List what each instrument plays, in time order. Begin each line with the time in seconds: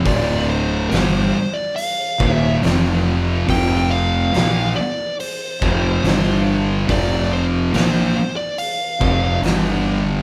0.05 fingered electric bass D1, distorted electric guitar D2 A2 D3, lead electric guitar D5, kick, open hi-hat
0.49 lead electric guitar C5
0.89 fingered electric bass G1, distorted electric guitar G2 D3 G3, lead electric guitar C5, open hi-hat
0.94 snare
1.54 lead electric guitar D5
1.76 lead electric guitar F5, open hi-hat
2.20 fingered electric bass D#1, distorted electric guitar D#2 A#2 D#3, kick
2.32 lead electric guitar E5
2.63 fingered electric bass F1, distorted electric guitar F2 C3 F3, snare, open hi-hat
3.48 fingered electric bass F1, distorted electric guitar F2 C3 F3, lead electric guitar G5, kick, open hi-hat
3.91 lead electric guitar F5
4.33 fingered electric bass A#1, distorted electric guitar A#2 F3 A#3, snare, open hi-hat
4.76 lead electric guitar D5
5.20 lead electric guitar C5, open hi-hat
5.62 fingered electric bass F1, distorted electric guitar F2 C3 F3, kick
6.03 fingered electric bass G1, distorted electric guitar G2 D3 G3, snare, open hi-hat
6.89 fingered electric bass F1, distorted electric guitar F2 C3 F3, lead electric guitar D5, kick, open hi-hat
7.33 lead electric guitar C5
7.73 fingered electric bass A#1, distorted electric guitar A#2 F3 A#3, lead electric guitar C5, snare, open hi-hat
8.36 lead electric guitar D5
8.58 lead electric guitar F5, open hi-hat
9.00 fingered electric bass F1, distorted electric guitar F2 C3 F3, kick
9.41 fingered electric bass G1, distorted electric guitar G2 D3 G3, open hi-hat
9.46 snare